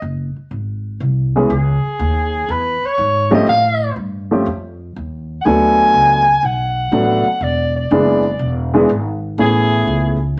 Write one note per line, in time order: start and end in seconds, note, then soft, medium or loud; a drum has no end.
0.02 0.34 F#1 medium
0.36 muted upright bass stroke soft
0.51 0.99 G#1 medium
1.00 1.49 C2 medium
1.36 1.49 E3 medium
1.36 1.49 G#3 medium
1.36 1.49 B3 medium
1.36 1.49 C#4 medium
1.36 1.50 G#4 medium
1.50 1.82 C#2 loud
1.50 2.52 G#4 medium
1.84 muted upright bass stroke soft
1.99 2.47 D#2 loud
2.48 2.80 E2 medium
2.48 2.87 B4 loud
2.82 3.34 C#5 medium
2.82 muted upright bass stroke soft
2.98 3.46 G#2 medium
3.31 3.45 F3 medium
3.31 3.46 A3 medium
3.31 3.46 C4 medium
3.31 3.46 C#4 medium
3.31 3.46 G4 medium
3.31 3.48 D#5 medium
3.47 3.95 A2 medium
3.47 3.94 F5 loud
3.96 4.44 G2 medium
4.31 4.45 F3 medium
4.31 4.45 A3 medium
4.31 4.45 C4 medium
4.31 4.45 C#4 medium
4.31 4.46 G4 medium
4.46 4.94 F2 medium
4.96 5.44 D#2 medium
5.41 6.21 F#3 medium
5.41 5.47 F#5 medium
5.41 6.46 G#5 loud
5.46 5.93 D2 medium
5.46 6.22 A3 medium
5.46 6.22 B3 medium
5.46 6.22 D4 medium
5.46 6.22 A4 medium
5.94 6.42 C#2 medium
6.43 6.91 B1 medium
6.43 7.45 F#5 loud
6.92 7.24 A1 medium
6.92 7.23 F#3 medium
6.92 7.23 A3 medium
6.92 7.23 B3 medium
6.92 7.23 D4 medium
6.92 7.23 A4 medium
7.27 muted upright bass stroke soft
7.41 7.89 E1 loud
7.41 7.76 D5 medium
7.76 8.71 D5 medium
7.91 8.39 F#1 medium
7.91 8.22 E3 medium
7.91 8.22 G#3 medium
7.91 8.22 B3 medium
7.91 8.22 D4 medium
7.91 8.23 G#4 medium
8.39 8.88 E1 medium
8.74 8.88 E3 medium
8.74 8.88 G#3 medium
8.74 8.89 B3 medium
8.74 8.88 D4 medium
8.74 8.89 G#4 medium
8.89 9.38 G#1 loud
9.38 9.87 A1 loud
9.38 10.15 E3 medium
9.38 10.16 A3 medium
9.38 10.16 B3 medium
9.38 10.16 C#4 soft
9.38 10.16 G#4 medium
9.38 10.19 G#4 loud
9.87 10.36 C#2 medium